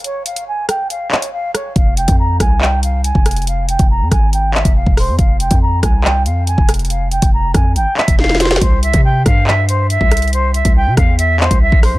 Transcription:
<<
  \new Staff \with { instrumentName = "Flute" } { \time 4/4 \key f \minor \tempo 4 = 140 des''8 f''8 aes''8 g''8 f''8 des''8 f''8 des''8 | f''8 g''8 bes''8 aes''8 g''8 f''8 aes''4 | f''8 g''8 bes''8 aes''8 g''8 e''8 f''8 c''8 | f''8 g''8 bes''8 aes''8 g''8 f''8 aes''4 |
f''8 g''8 bes''8 aes''8 g''8 e''8 f''8 c''8 | c''8 e''8 g''8 f''8 e''8 c''8 e''4 | c''8 e''8 g''8 f''8 e''8 c''8 e''8 c''8 | }
  \new Staff \with { instrumentName = "808-style bass" } { \clef bass \time 4/4 \key f \minor r1 | f,,8. f,8. c,4.~ c,16 f,,8.~ | f,,8. f,,8 f,16 aes,,4~ aes,,16 f,,8 e,,8 f,16 | f,,8. f,8. c,4 f,8. f,,8.~ |
f,,8. f,,8. f,8 aes,,16 r8 f,,4~ f,,16 | c,8. c8. g,4.~ g,16 c,8.~ | c,8. c,8 c16 e,4~ e,16 c,8 bes,,8 c16 | }
  \new DrumStaff \with { instrumentName = "Drums" } \drummode { \time 4/4 hh8 hh16 hh16 r8 <hh ss>8 hh8 hc16 hh16 r8 <hh ss>8 | <hh bd>8 hh16 <hh bd>16 r8 <hh bd ss>8 hc8 hh8 hh16 bd16 <hh ss>32 hh32 hh32 hh32 | hh8 hh16 <hh bd>16 r8 <hh bd ss>8 hh8 hc16 <hh bd>16 r16 bd16 <hho ss>8 | <hh bd>8 hh16 <hh bd>16 r8 <hh bd ss>8 hc8 hh8 hh16 bd16 <hh ss>32 hh32 hh32 hh32 |
hh8 hh16 <hh bd>16 r8 <hh bd ss>8 hh8 hc16 <hh bd>16 sn32 sn32 sn32 sn32 <hh sn>32 sn32 sn32 sn32 | <hh bd>8 hh16 <hh bd>16 r8 <hh bd ss>8 hc8 hh8 hh16 bd16 <hh ss>32 hh32 hh32 hh32 | hh8 hh16 <hh bd>16 r8 <hh bd ss>8 hh8 hc16 <hh bd>16 r16 bd16 <hho ss>8 | }
>>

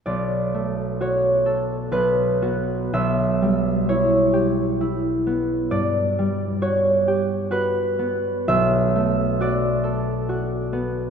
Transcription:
<<
  \new Staff \with { instrumentName = "Harp" } { \time 3/4 \key b \minor \tempo 4 = 65 d''4 cis''4 b'4 | e''4 cis''2 | d''4 cis''4 b'4 | e''4 d''2 | }
  \new Staff \with { instrumentName = "Harp" } { \time 3/4 \key b \minor b,,8 a8 fis'8 a'8 b,,8 <b fis'>8 | b,,8 g8 e'8 g'8 e'8 b8 | g,8 g8 fis'8 g'8 fis'8 b8 | b,,8 a8 fis'8 a'8 fis'8 b8 | }
>>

